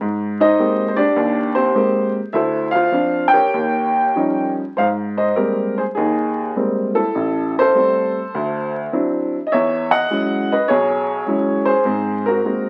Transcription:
0.01 0.51 G#2 medium
0.40 0.86 D#4 medium
0.40 0.86 C5 medium
0.40 0.91 D#5 loud
0.59 1.01 G#3 soft
0.59 1.01 A#3 medium
0.59 1.01 C4 soft
0.59 0.95 G4 medium
0.88 0.98 C5 medium
0.96 1.53 D4 medium
0.96 1.53 G4 medium
0.96 1.52 D5 loud
1.16 1.68 D#2 medium
1.55 1.74 C4 medium
1.55 1.74 G4 medium
1.55 2.11 C5 medium
1.75 2.18 G#3 medium
1.75 2.18 A#3 soft
1.75 2.18 C4 medium
1.75 2.18 G4 medium
2.33 2.86 D2 medium
2.33 2.73 E4 medium
2.33 2.73 A4 medium
2.33 2.73 C5 medium
2.33 2.76 E5 medium
2.71 3.35 F5 medium
2.75 3.31 F4 medium
2.75 3.31 C5 medium
2.92 3.36 F3 soft
2.92 3.36 C4 soft
2.92 3.36 D4 medium
3.28 4.51 G5 loud
3.33 4.53 G4 medium
3.33 4.53 A#4 medium
3.33 4.53 C#5 medium
3.54 4.08 D#2 medium
4.15 4.60 F3 medium
4.15 4.60 G3 soft
4.15 4.60 C#4 soft
4.15 4.61 D#4 medium
4.77 5.30 G#2 medium
4.77 4.86 C5 medium
4.77 4.87 F5 medium
5.17 5.35 C5 medium
5.17 5.35 D#5 medium
5.36 5.81 G3 soft
5.36 5.81 G#3 soft
5.36 5.81 A#3 soft
5.36 5.81 C4 soft
5.36 5.75 G4 medium
5.36 5.75 A#4 medium
5.78 5.84 G#4 medium
5.78 5.83 C5 medium
5.95 6.49 D#2 medium
5.95 6.53 D#4 medium
5.95 6.52 G#4 medium
6.56 6.99 G3 soft
6.56 7.00 G#3 soft
6.56 7.00 A#3 soft
6.56 7.00 C4 medium
6.95 7.53 E4 medium
6.95 7.52 A4 medium
7.15 7.68 A1 medium
7.59 8.74 A4 medium
7.59 8.73 C5 loud
7.75 8.18 G3 medium
7.75 8.19 A3 soft
7.75 8.19 C4 medium
8.35 8.86 D2 medium
8.92 9.35 F#3 medium
8.92 9.35 C4 soft
8.92 9.36 D4 medium
8.92 9.36 E4 medium
9.47 9.52 D#5 medium
9.52 10.04 E2 medium
9.52 9.90 C#5 medium
9.52 9.94 E5 loud
9.91 10.46 D#5 medium
9.91 10.52 F#5 loud
10.10 10.53 F#3 soft
10.10 10.53 G#3 soft
10.10 10.53 C#4 soft
10.10 10.53 E4 medium
10.52 10.69 B4 medium
10.52 10.70 D#5 medium
10.68 11.21 B1 medium
10.68 11.64 G#4 medium
10.68 11.71 C#5 medium
11.26 11.70 F#3 medium
11.26 11.70 G#3 soft
11.26 11.70 C#4 soft
11.26 11.70 E4 medium
11.65 12.23 G#4 medium
11.65 12.28 C5 loud
11.85 12.38 G#2 medium
11.85 12.38 C4 medium
12.26 12.45 F#4 medium
12.26 12.69 A#4 medium
12.45 12.69 G#3 soft
12.45 12.69 A#3 soft
12.45 12.69 C4 soft
12.45 12.69 F#4 soft

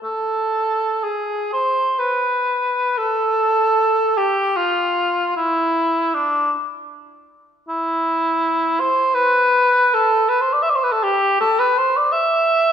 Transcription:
0.04 1.05 A4 medium
1.04 1.51 G#4 soft
1.53 2.00 C5 medium
1.99 2.99 B4 medium
2.98 4.19 A4 medium
4.17 4.58 G4 medium
4.57 5.34 F4 medium
5.36 6.16 E4 medium
6.14 6.52 D4 medium
7.69 8.82 E4 medium
8.80 9.16 C5 medium
9.14 9.96 B4 medium
9.94 10.31 A4 medium
10.29 10.42 B4 medium
10.41 10.54 C5 medium
10.53 10.64 D5 medium
10.63 10.72 E5 medium
10.70 10.77 D5 medium
10.75 10.85 C5 medium
10.83 10.94 B4 medium
10.92 11.05 A4 medium
11.03 11.40 G4 medium
11.40 11.61 A4 medium
11.59 11.79 B4 medium
11.78 11.98 C5 medium
11.97 12.14 D5 medium
12.12 12.72 E5 loud

